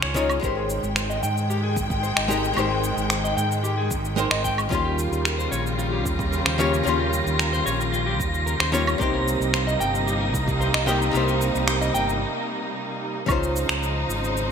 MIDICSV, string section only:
0, 0, Header, 1, 2, 480
1, 0, Start_track
1, 0, Key_signature, -4, "major"
1, 0, Tempo, 535714
1, 383, Time_signature, 4, 2, 24, 8
1, 13007, End_track
2, 0, Start_track
2, 0, Title_t, "String section"
2, 0, Program_c, 0, 48
2, 0, Note_on_c, 0, 51, 68
2, 0, Note_on_c, 0, 61, 69
2, 0, Note_on_c, 0, 65, 78
2, 351, Note_off_c, 0, 65, 0
2, 352, Note_off_c, 0, 51, 0
2, 352, Note_off_c, 0, 61, 0
2, 382, Note_on_c, 0, 79, 83
2, 383, Note_on_c, 0, 51, 72
2, 383, Note_on_c, 0, 56, 72
2, 4187, Note_off_c, 0, 56, 0
2, 4187, Note_off_c, 0, 79, 0
2, 4188, Note_off_c, 0, 51, 0
2, 4221, Note_on_c, 0, 55, 69
2, 4224, Note_on_c, 0, 65, 80
2, 4225, Note_on_c, 0, 49, 73
2, 8027, Note_off_c, 0, 55, 0
2, 8028, Note_off_c, 0, 65, 0
2, 8029, Note_off_c, 0, 49, 0
2, 8064, Note_on_c, 0, 58, 68
2, 8066, Note_on_c, 0, 48, 75
2, 8066, Note_on_c, 0, 63, 83
2, 8069, Note_on_c, 0, 55, 67
2, 11868, Note_off_c, 0, 58, 0
2, 11869, Note_off_c, 0, 48, 0
2, 11869, Note_off_c, 0, 63, 0
2, 11871, Note_off_c, 0, 55, 0
2, 11902, Note_on_c, 0, 53, 69
2, 11903, Note_on_c, 0, 49, 71
2, 11905, Note_on_c, 0, 72, 68
2, 11906, Note_on_c, 0, 63, 86
2, 13007, Note_off_c, 0, 49, 0
2, 13007, Note_off_c, 0, 53, 0
2, 13007, Note_off_c, 0, 63, 0
2, 13007, Note_off_c, 0, 72, 0
2, 13007, End_track
0, 0, End_of_file